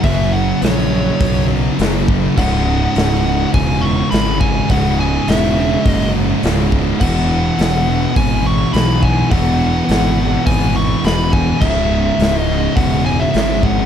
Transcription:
0.03 0.52 F#1 loud
0.03 0.90 F#2 medium
0.03 0.90 C#3 loud
0.03 0.90 F#3 loud
0.03 0.34 E5 medium
0.03 kick loud
0.03 open hi-hat medium
0.32 0.63 F#5 medium
0.61 1.10 A#1 medium
0.61 1.46 C#5 medium
0.61 snare loud
0.61 open hi-hat medium
0.91 1.77 F#2 medium
0.91 1.78 C#3 medium
0.91 1.77 F#3 medium
1.20 1.69 B1 loud
1.20 kick loud
1.20 open hi-hat medium
1.48 1.76 F#2 medium
1.48 1.77 C#3 medium
1.48 1.76 F#3 medium
1.78 2.27 F#1 medium
1.78 2.35 F#2 medium
1.78 2.36 C#3 medium
1.78 2.37 F#3 medium
1.78 snare loud
1.78 open hi-hat medium
2.08 kick loud
2.36 2.85 C#1 loud
2.36 3.26 C#2 medium
2.36 3.23 G#2 loud
2.36 3.24 C#3 loud
2.36 3.50 F#5 medium
2.36 kick loud
2.36 crash medium
2.96 3.43 C#1 medium
2.96 snare loud
2.96 open hi-hat medium
3.24 4.10 C#2 medium
3.24 4.10 G#2 medium
3.24 4.10 C#3 medium
3.54 4.01 E1 medium
3.54 3.84 G#5 loud
3.54 kick loud
3.54 open hi-hat medium
3.81 4.09 C#2 medium
3.81 4.10 G#2 medium
3.81 4.09 C#3 medium
3.81 4.10 C#6 loud
4.11 4.59 G#1 medium
4.11 4.68 C#2 medium
4.11 4.68 G#2 medium
4.11 4.69 C#3 medium
4.11 4.38 B5 loud
4.11 snare loud
4.11 open hi-hat medium
4.40 4.70 G#5 loud
4.40 kick medium
4.69 5.17 C#1 loud
4.69 5.54 C#2 medium
4.69 5.55 G#2 loud
4.69 5.55 C#3 loud
4.69 5.00 F#5 medium
4.69 kick loud
4.69 open hi-hat medium
5.00 5.29 G#5 medium
5.27 5.75 E1 medium
5.27 5.84 E5 medium
5.27 snare loud
5.27 open hi-hat medium
5.56 6.42 C#2 medium
5.56 6.42 G#2 medium
5.56 6.41 C#3 medium
5.84 6.33 F#1 medium
5.84 6.11 D#5 medium
5.84 kick loud
5.84 open hi-hat medium
6.13 6.41 C#2 medium
6.13 6.42 G#2 medium
6.13 6.41 C#3 medium
6.43 6.90 C#1 medium
6.43 6.99 C#2 medium
6.43 7.00 G#2 medium
6.43 7.00 C#3 medium
6.43 snare loud
6.43 open hi-hat medium
6.72 kick medium
7.00 7.48 E1 loud
7.00 7.89 E2 medium
7.00 7.86 B2 medium
7.00 7.86 E3 loud
7.00 8.16 F#5 medium
7.00 kick loud
7.00 crash loud
7.58 8.06 E1 medium
7.58 snare loud
7.58 open hi-hat medium
7.87 8.72 E2 medium
7.87 8.72 B2 medium
7.87 8.76 E3 medium
8.16 8.63 G#1 medium
8.16 8.46 G#5 loud
8.16 kick loud
8.16 open hi-hat medium
8.43 8.71 E2 medium
8.43 8.72 B2 medium
8.43 8.75 E3 medium
8.43 8.73 C#6 loud
8.73 9.21 B1 medium
8.73 9.29 E2 medium
8.73 9.30 B2 medium
8.73 9.32 E3 medium
8.73 9.03 B5 loud
8.73 snare loud
8.73 open hi-hat medium
9.02 9.30 G#5 medium
9.02 kick medium
9.31 9.79 E1 loud
9.31 10.16 E2 medium
9.31 10.16 B2 loud
9.31 10.17 E3 loud
9.31 10.46 F#5 medium
9.31 kick loud
9.31 open hi-hat medium
9.88 10.36 G#1 medium
9.88 snare loud
9.88 open hi-hat medium
10.17 11.03 E2 medium
10.17 11.03 B2 medium
10.17 11.06 E3 medium
10.46 10.94 G#1 medium
10.46 10.76 G#5 loud
10.46 kick loud
10.46 open hi-hat medium
10.73 11.00 E2 medium
10.73 11.02 B2 medium
10.73 11.04 E3 medium
10.73 11.05 C#6 loud
11.04 11.51 E1 medium
11.04 11.60 E2 medium
11.04 11.61 B2 medium
11.04 11.63 E3 medium
11.04 11.32 B5 medium
11.04 snare loud
11.04 open hi-hat medium
11.32 11.59 G#5 medium
11.32 kick loud
11.61 12.09 C#1 medium
11.61 12.49 C#2 medium
11.61 12.47 G#2 medium
11.61 12.46 C#3 loud
11.61 12.39 E5 medium
11.61 kick loud
11.61 crash loud
12.19 12.66 C#1 medium
12.19 snare loud
12.19 open hi-hat medium
12.39 12.80 D#5 medium
12.46 13.33 C#2 medium
12.46 13.33 G#2 medium
12.46 13.35 C#3 medium
12.76 13.24 E1 loud
12.76 13.05 F#5 loud
12.76 kick loud
12.76 open hi-hat medium
13.04 13.32 C#2 medium
13.04 13.33 G#2 medium
13.04 13.36 C#3 medium
13.04 13.21 G#5 medium
13.20 13.65 E5 medium
13.33 13.82 G#1 medium
13.33 13.86 C#2 medium
13.33 13.86 G#2 medium
13.33 13.86 C#3 medium
13.33 snare loud
13.33 open hi-hat medium
13.63 13.86 F#5 medium
13.63 kick medium

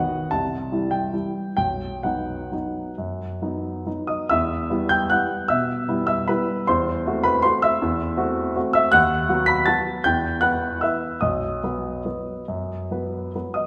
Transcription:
0.00 0.29 D#3 soft
0.00 0.29 B3 soft
0.00 0.29 F#4 soft
0.00 0.32 F#5 medium
0.31 0.70 C2 medium
0.31 0.90 A5 medium
0.72 1.09 E3 soft
0.72 1.09 G3 soft
0.72 1.09 E4 soft
0.91 1.55 G5 medium
1.13 1.54 E3 soft
1.13 1.54 G3 soft
1.13 1.54 E4 soft
1.57 2.03 B1 soft
1.57 2.04 G5 medium
2.03 2.49 F#3 soft
2.03 2.49 B3 soft
2.03 2.49 D#4 soft
2.03 4.08 F#5 medium
2.52 2.94 F#3 soft
2.52 2.94 B3 soft
2.52 2.94 D#4 soft
2.98 3.41 F#2 soft
3.42 3.82 F#3 soft
3.42 3.82 B3 soft
3.42 3.82 D#4 soft
3.86 4.26 F#3 soft
3.86 4.26 B3 soft
3.86 4.26 D#4 soft
4.07 4.29 D#5 soft
4.07 4.29 D#6 medium
4.29 4.70 E2 medium
4.29 4.88 E5 medium
4.29 4.91 E6 medium
4.70 5.08 G3 soft
4.70 5.08 B3 soft
4.70 5.08 E4 medium
4.89 5.10 G5 medium
4.89 5.11 G6 loud
5.10 5.46 G3 soft
5.10 5.46 B3 soft
5.10 5.47 E4 soft
5.10 5.47 F#5 medium
5.10 5.49 F#6 medium
5.48 5.88 B2 medium
5.48 6.04 E5 medium
5.48 6.05 E6 medium
5.88 6.24 G3 soft
5.88 6.24 B3 medium
5.88 6.25 E4 medium
6.07 6.27 E5 medium
6.07 6.27 E6 medium
6.28 6.64 G3 soft
6.28 6.64 B3 soft
6.28 6.65 E4 soft
6.28 6.65 B4 medium
6.28 6.67 B5 medium
6.67 7.05 E2 medium
6.67 7.21 C5 medium
6.67 7.24 C6 loud
7.06 7.41 A3 medium
7.06 7.41 C4 medium
7.06 7.41 F#4 medium
7.24 7.43 B4 medium
7.24 7.43 B5 medium
7.42 7.78 A3 soft
7.42 7.78 C4 soft
7.42 7.79 F#4 soft
7.42 7.62 C5 medium
7.42 7.62 C6 medium
7.62 8.71 E5 medium
7.62 8.72 E6 loud
7.82 8.17 E2 medium
8.17 8.52 A3 medium
8.17 8.52 C4 medium
8.17 8.52 F#4 medium
8.56 8.89 A3 medium
8.56 8.89 C4 medium
8.56 8.90 F#4 medium
8.73 8.92 E5 medium
8.73 8.92 E6 loud
8.92 9.27 D#2 medium
8.92 9.44 F#5 medium
8.92 9.47 F#6 loud
9.29 9.63 F#3 medium
9.29 9.63 B3 medium
9.29 9.63 F#4 medium
9.46 9.66 B5 medium
9.46 9.66 B6 loud
9.66 10.01 F#3 soft
9.66 10.01 B3 soft
9.66 10.01 F#4 medium
9.66 10.02 A5 medium
9.66 10.04 A6 loud
10.04 10.41 E2 medium
10.04 10.40 G5 medium
10.04 10.42 G6 loud
10.41 10.77 E3 soft
10.41 10.78 B3 soft
10.41 10.78 B4 medium
10.41 10.78 F#5 medium
10.41 10.81 F#6 loud
10.81 11.18 E3 soft
10.81 11.18 B3 soft
10.81 11.18 B4 soft
10.81 11.19 E5 medium
10.81 11.21 E6 medium
11.21 11.61 B1 medium
11.21 13.30 D#5 medium
11.21 13.34 D#6 medium
11.64 12.02 F#3 soft
11.64 12.02 B3 soft
11.64 12.02 B4 soft
12.05 12.44 F#3 soft
12.05 12.44 B3 soft
12.05 12.44 B4 soft
12.48 12.90 F#2 soft
12.91 13.30 F#3 soft
12.91 13.31 B3 soft
12.91 13.31 B4 soft
13.35 13.67 F#3 soft
13.35 13.67 B3 soft
13.35 13.67 B4 soft
13.54 13.67 D#5 medium
13.54 13.67 D#6 medium

